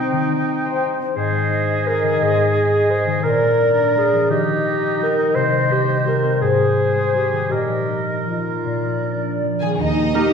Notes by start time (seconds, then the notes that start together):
Already playing: D#3 G3 C4 D#4 G4 C5 G5
0.13 D#3
0.30 D#4
0.47 G4
0.65 C5
0.83 D#4
1.00 C4
1.15 G#2 G#4 C5 D#5
1.32 G#3
1.49 D#4
1.68 G#4
1.86 G#3 A#4
2.03 D#3
2.20 G#2 G#4
2.36 G#3
2.54 D#4
2.72 G#4
2.89 G#3 C5
3.07 D#3
3.23 A#2 A#4 D5
3.41 G#3
3.59 D4
3.77 F4
3.95 G#3 G#4
4.13 F3
4.29 D#3 D#4 G4 D#5
4.46 D#4
4.64 G4
4.82 D#4
5.00 G3 A#4
5.18 D#4
5.34 C3 C5
5.52 G3
5.70 D#4 G4
5.89 G4
6.06 G3 A#4
6.23 C4
6.40 G#2 G#4 C5
6.58 G3
6.77 D#4
6.95 C5
7.14 G3 G4
7.33 D#3
7.50 A#2 G4 A#4 D#5
7.68 F3
7.88 D#4
8.08 A#4
8.27 F3 F4
8.46 A#3
8.65 A#2 D5
8.84 F3
9.03 D4
9.23 A#4
9.42 F3
9.61 D#3 A#3 G#4 G#5
9.65 G3
9.70 D#4
9.74 D#2 A#4 D#5
9.79 D#4
10.14 A#3 D#4 G4 A#4 A#5